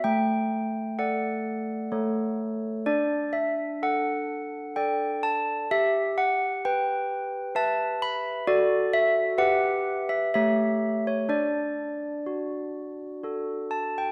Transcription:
\new Staff \with { instrumentName = "Handbells" } { \time 3/4 \key d \major \tempo 4 = 64 << { g''4 fis''4. r8 | d''8 e''8 fis''4 g''8 a''8 | e''8 fis''8 g''4 a''8 b''8 | d''8 e''8 fis''8. e''16 e''8. cis''16 |
d''2~ d''8 a''16 g''16 | } \\ { a4 <a' d''>4 <a a' cis''>4 | d'4 a'4 <a' d''>4 | g'4 b'4 <b' e''>4 | <fis' a'>4 <g' b' e''>4 <a g' cis''>4 |
d'4 fis'4 <fis' a'>4 | } >> }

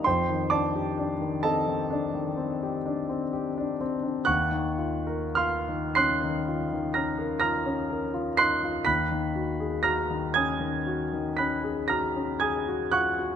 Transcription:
\new Staff \with { instrumentName = "Grand piano" } { \time 9/8 \key ees \dorian \tempo 4. = 41 << { <c'' g'' c'''>8 <d'' a'' d'''>4 <a' ees'' a''>2~ <a' ees'' a''>8 r8 | <ges'' des''' ges'''>4 <f'' c''' f'''>8 <c''' ges''' c''''>4 <bes'' f''' bes'''>8 <bes'' f''' bes'''>4 <c''' ges''' c''''>8 | <b'' fis''' b'''>4 <bes'' f''' bes'''>8 <gis'' dis''' gis'''>4 <b'' fis''' b'''>8 <bes'' f''' bes'''>8 <gis'' dis''' gis'''>8 <fis'' cis''' fis'''>8 | } \\ { f,16 ees16 d'16 g'16 d'16 ees16 c'16 ees16 d'16 ees16 c'16 g'16 d'16 c'16 g'16 d'16 c'16 d'16 | ees,16 ees16 f'16 bes'16 f'16 ees16 des'16 ees16 f'16 ees16 des'16 bes'16 f'16 des'16 bes'16 f'16 ees'16 f'16 | dis,16 dis16 fis'16 gis'16 fis'16 dis16 cis'16 dis16 fis'16 dis16 cis'16 gis'16 fis'16 cis'16 gis'16 fis'16 f'16 fis'16 | } >> }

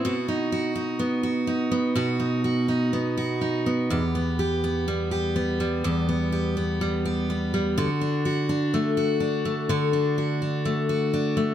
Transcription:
\new Staff \with { instrumentName = "Steel-string acoustic guitar" } { \time 4/4 \key e \minor \tempo 4 = 62 <b, fis'>16 dis'16 fis'16 dis'16 b16 fis'16 dis'16 b16 <b, fis'>16 dis'16 fis'16 dis'16 b16 fis'16 dis'16 b16 | <e, g'>16 b16 g'16 b16 g16 g'16 b16 g16 <e, g'>16 b16 g'16 b16 g16 g'16 b16 g16 | <d fis'>16 d'16 fis'16 d'16 a16 fis'16 d'16 a16 <d fis'>16 d'16 fis'16 d'16 a16 fis'16 d'16 a16 | }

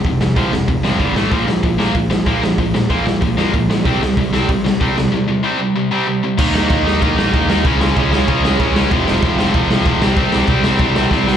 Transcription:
<<
  \new Staff \with { instrumentName = "Distorted electric guitar" } { \time 4/4 \key c \mixolydian \tempo 4 = 190 r1 | r1 | r1 | r1 |
r1 | <ees g bes ees'>4. <ees g bes ees'>2~ <ees g bes ees'>8 | <des aes des' f'>4. <des aes des' f'>2~ <des aes des' f'>8 | <f a c' f'>4. <f a c' f'>2 <c e g c' e'>8~ |
<c e g c' e'>4 <c e g c' e'>2~ <c e g c' e'>8 r8 | }
  \new Staff \with { instrumentName = "Distorted electric guitar" } { \clef bass \time 4/4 \key c \mixolydian <f, c>8 <f, c>8 <f, c f>8 <f, c>8 <f, c>8 <f, c f>8 <g, d g>8 <a, e a>8 | <bes, f bes>8 <bes, f>8 <bes, f>8 <bes, f bes>8 <bes, f>8 <bes, f>8 <bes, f bes>8 <bes, f>8 | <bes, f>8 <bes, f>8 <bes, f bes>8 <bes, f>8 <bes, f>8 <bes, f bes>8 <bes, f>8 <bes, f>8 | <c g c'>8 <c g>8 <c g>8 <c g c'>8 <c g>8 <c g>8 <c g c'>8 <c g>8 |
<c g>8 <c g>8 <c g c'>8 <c g>8 <c g>8 <c g c'>8 <c g>8 <c g>8 | <ees bes ees'>8 <ees bes ees'>8 <ees bes ees'>8 <ees bes ees'>8 <ees bes ees'>8 <ees bes ees'>8 <ees bes ees'>8 <ees bes ees'>8 | <des aes des'>8 <des aes des'>8 <des aes des'>8 <des aes des'>8 <des aes des'>8 <des aes des'>8 <des aes des'>8 <des aes des'>8 | <f, c f>8 <f, c f>8 <f, c f>8 <f, c f>8 <f, c f>8 <f, c f>8 <f, c f>8 <c g c'>8 |
<c g c'>8 <c g c'>8 <c g c'>8 <c g c'>8 <c g c'>8 <c g c'>8 <c g c'>8 <c g c'>8 | }
  \new Staff \with { instrumentName = "Overdriven electric guitar" } { \clef bass \time 4/4 \key c \mixolydian <f, c>8 <f, c>8 <f, c f>8 <f, c>8 <f, c>8 <f, c f>8 <g, d g>8 <a, e a>8 | <bes, f bes>8 <bes, f>8 <bes, f>8 <bes, f bes>8 <bes, f>8 <bes, f>8 <bes, f bes>8 <bes, f>8 | <bes, f>8 <bes, f>8 <bes, f bes>8 <bes, f>8 <bes, f>8 <bes, f bes>8 <bes, f>8 <bes, f>8 | <c g c'>8 <c g>8 <c g>8 <c g c'>8 <c g>8 <c g>8 <c g c'>8 <c g>8 |
<c g>8 <c g>8 <c g c'>8 <c g>8 <c g>8 <c g c'>8 <c g>8 <c g>8 | <ees bes ees'>8 <ees bes ees'>8 <ees bes ees'>8 <ees bes ees'>8 <ees bes ees'>8 <ees bes ees'>8 <ees bes ees'>8 <ees bes ees'>8 | <des aes des'>8 <des aes des'>8 <des aes des'>8 <des aes des'>8 <des aes des'>8 <des aes des'>8 <des aes des'>8 <des aes des'>8 | <f, c f>8 <f, c f>8 <f, c f>8 <f, c f>8 <f, c f>8 <f, c f>8 <f, c f>8 <c g c'>8 |
<c g c'>8 <c g c'>8 <c g c'>8 <c g c'>8 <c g c'>8 <c g c'>8 <c g c'>8 <c g c'>8 | }
  \new Staff \with { instrumentName = "Picked electric bass" } { \clef bass \time 4/4 \key c \mixolydian f,,8 f,,8 c,8 f,,8 f,,8 ges,,8 g,,8 a,,8 | bes,,8 bes,,8 bes,,8 bes,,8 bes,,8 bes,,8 bes,,4 | bes,,8 bes,,8 f,8 bes,,8 bes,,8 f,8 bes,,8 bes,,8 | c,8 c,8 c,8 c,8 c,8 c,8 c,4 |
r1 | ees,4 ees,4 ees,8 bes,,8 ees,8 ees,8 | des,4 des,4 des,4 des,4 | f,,4 f,,4 f,,8 c,8 f,,8 c,8 |
c,4 c,4 c,4 c,4 | }
  \new DrumStaff \with { instrumentName = "Drums" } \drummode { \time 4/4 <hho bd>8 sn8 <hho bd>8 sn8 <hho bd>8 sn8 <hho bd>8 sn8 | <hho bd>8 sn8 <hho bd>8 sn8 <hho bd>8 sn8 <hho bd>8 sn8 | <hho bd>8 sn8 <hho bd>8 sn8 <hho bd>8 sn8 <hho bd>8 sn8 | <hho bd>8 sn8 <hho bd>8 sn8 <hho bd>8 sn8 <hho bd>8 sn8 |
r4 r4 r4 r4 | <cymc bd>8 sn8 <cymc bd>8 sn8 <cymc bd>8 sn8 <cymc bd>8 sn8 | <cymc bd>8 sn8 <cymc bd>8 sn8 <cymc bd>8 sn8 <cymc bd>8 sn8 | <cymc bd>8 sn8 <cymc bd>8 sn8 <cymc bd>8 sn8 <cymc bd>8 sn8 |
<cymc bd>8 sn8 <cymc bd>8 sn8 <cymc bd>8 sn8 <bd sn>8 sn8 | }
>>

